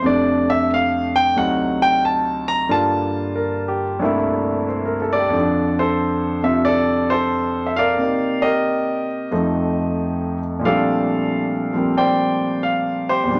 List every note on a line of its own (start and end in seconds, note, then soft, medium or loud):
0.02 1.35 F2 medium
0.02 1.35 C3 soft
0.02 1.37 A3 medium
0.06 1.38 D4 medium
0.06 0.49 D5 medium
0.50 0.70 E5 loud
0.74 1.15 F5 medium
1.16 1.36 G5 loud
1.36 2.69 D2 medium
1.36 2.69 C3 medium
1.36 2.69 F#3 medium
1.36 2.69 D#4 medium
1.36 1.80 F#5 medium
1.82 2.02 G5 loud
2.05 2.47 A5 medium
2.48 2.68 A#5 loud
2.69 3.99 G2 medium
2.69 4.00 D3 soft
2.69 4.01 A#3 soft
2.69 4.02 F4 medium
2.69 4.65 A5 loud
3.35 3.87 A#4 medium
3.68 4.14 G4 medium
3.99 5.32 C2 medium
3.99 5.33 G2 medium
3.99 5.31 D3 medium
3.99 5.34 A3 medium
4.03 5.35 A#3 medium
4.03 5.35 E4 medium
4.68 4.99 C5 medium
4.85 5.13 A#4 medium
5.02 5.12 A4 medium
5.13 5.79 A4 medium
5.13 5.75 D5 medium
5.19 5.41 G4 medium
5.29 7.96 F2 medium
5.29 7.98 D3 medium
5.36 8.00 F3 medium
5.36 8.02 D4 medium
5.79 6.65 A4 medium
5.79 6.41 C5 medium
6.43 7.96 C3 soft
6.43 7.99 C4 soft
6.43 8.00 F4 soft
6.43 6.66 E5 medium
6.65 7.11 A4 medium
6.65 7.12 D5 medium
7.10 7.95 A4 medium
7.10 7.69 C5 loud
7.67 7.77 E5 medium
7.76 8.43 A#4 medium
7.76 9.07 D5 medium
7.76 8.45 F5 loud
7.97 9.31 C3 soft
7.97 9.31 A#3 soft
7.97 9.32 C4 soft
8.02 9.31 D#4 medium
8.42 10.39 G4 medium
8.42 9.28 A#4 medium
8.42 10.38 D#5 loud
9.31 10.64 F2 medium
9.31 10.60 F3 medium
9.31 10.64 A3 medium
9.31 10.65 D#4 medium
10.59 13.26 A#2 medium
10.59 11.72 F3 medium
10.64 11.73 G3 medium
10.64 13.30 A3 medium
10.64 11.93 A4 medium
10.64 11.93 D5 medium
10.64 12.01 F5 medium
10.68 11.75 C4 medium
10.68 13.32 D4 medium
11.73 13.28 F3 soft
11.73 13.29 G3 soft
11.73 13.29 A#3 soft
11.73 13.30 C4 medium
11.97 13.08 C5 medium
11.97 13.25 D5 medium
11.97 12.65 G5 medium
12.63 13.09 F5 medium
13.09 13.40 G4 medium
13.09 13.40 C5 medium
13.23 13.40 E2 medium
13.23 13.40 A#2 medium
13.31 13.40 G3 medium
13.31 13.40 D4 medium